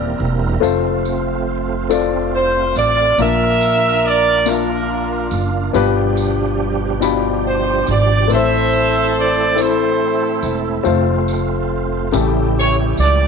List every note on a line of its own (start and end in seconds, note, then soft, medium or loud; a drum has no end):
0.00 0.17 D#1 medium
0.00 0.58 E3 medium
0.00 0.60 G3 medium
0.00 0.59 A#3 soft
0.00 0.62 A#3 medium
0.00 0.62 C4 medium
0.00 0.59 D4 medium
0.00 0.63 E4 medium
0.00 0.61 A#4 medium
0.00 0.17 D5 medium
0.00 0.65 E5 medium
0.20 0.59 E1 medium
0.60 2.72 F1 medium
0.60 1.80 A3 medium
0.60 3.16 A3 medium
0.60 1.80 C4 medium
0.60 3.16 C4 medium
0.60 1.80 F4 medium
0.60 5.71 F4 medium
0.60 1.81 A4 medium
0.60 1.81 C5 loud
0.60 tambourine medium
1.05 tambourine soft
1.89 3.08 A3 medium
1.89 3.09 C4 medium
1.89 3.09 F4 medium
1.89 3.09 A4 medium
1.89 3.10 D5 medium
1.89 tambourine medium
2.35 2.74 C5 medium
2.76 3.16 A1 medium
2.76 3.17 D5 medium
2.76 tambourine medium
3.18 5.28 A#1 medium
3.18 4.43 A#2 medium
3.18 4.37 A#3 medium
3.18 5.73 A#3 medium
3.18 4.37 D4 medium
3.18 8.27 D4 medium
3.18 4.37 F4 medium
3.18 4.37 A#4 medium
3.18 4.44 A#4 medium
3.18 4.38 D5 medium
3.18 4.05 E5 loud
3.18 tambourine medium
3.61 tambourine medium
4.07 4.48 D5 loud
4.46 5.64 A#3 medium
4.46 5.65 D4 medium
4.46 5.65 F4 medium
4.46 5.65 A#4 medium
4.46 5.65 E5 medium
4.46 tambourine medium
4.50 5.72 D4 medium
4.50 5.72 F4 medium
4.50 5.44 A#4 medium
5.31 5.71 F#1 medium
5.31 tambourine medium
5.73 7.84 G1 medium
5.73 6.99 G2 medium
5.73 8.28 B2 medium
5.73 8.28 F3 medium
5.73 8.28 G3 medium
5.73 6.92 B3 medium
5.73 6.93 D4 medium
5.73 6.93 F4 medium
5.73 8.28 G4 medium
5.73 6.93 G4 medium
5.73 6.93 B4 loud
5.73 tambourine soft
6.17 tambourine medium
7.00 8.20 B2 medium
7.00 8.20 D4 medium
7.00 8.20 F4 medium
7.00 8.20 G4 medium
7.00 8.21 B5 medium
7.00 tambourine loud
7.48 7.86 C5 medium
7.87 8.27 G#1 loud
7.87 8.32 D5 medium
7.87 tambourine medium
8.28 10.39 A1 medium
8.28 9.53 A2 medium
8.28 9.47 A3 medium
8.28 12.10 A3 medium
8.28 9.47 C4 medium
8.28 12.09 C4 medium
8.28 9.48 E4 medium
8.28 10.84 E4 medium
8.28 9.48 A4 medium
8.28 8.37 B4 medium
8.28 tambourine medium
8.33 9.56 A4 medium
8.33 9.55 C5 medium
8.33 9.51 C5 medium
8.33 9.14 E5 loud
8.73 tambourine medium
9.19 9.60 D5 medium
9.56 10.75 A3 medium
9.56 10.75 C4 medium
9.56 10.75 E4 medium
9.56 10.76 A4 medium
9.56 10.76 C5 medium
9.56 tambourine loud
9.60 10.83 E4 medium
9.60 10.83 A4 medium
9.60 10.56 C5 medium
10.42 10.82 E1 medium
10.42 tambourine medium
10.84 12.10 F1 medium
10.84 12.03 A3 medium
10.84 12.03 C4 medium
10.84 12.03 F4 medium
10.84 12.12 F4 medium
10.84 12.03 A4 medium
10.84 12.04 C5 medium
10.84 tambourine soft
11.28 tambourine medium
12.12 12.95 A1 loud
12.12 13.28 A2 medium
12.12 13.28 C#3 medium
12.12 13.28 C#3 soft
12.12 13.28 E3 medium
12.12 13.28 G3 medium
12.12 13.28 A3 medium
12.12 13.28 E4 medium
12.12 13.28 G4 medium
12.12 13.28 A4 medium
12.12 tambourine medium
12.60 12.76 C#5 medium
12.97 13.28 C#2 medium
12.97 13.28 D5 medium
12.97 tambourine medium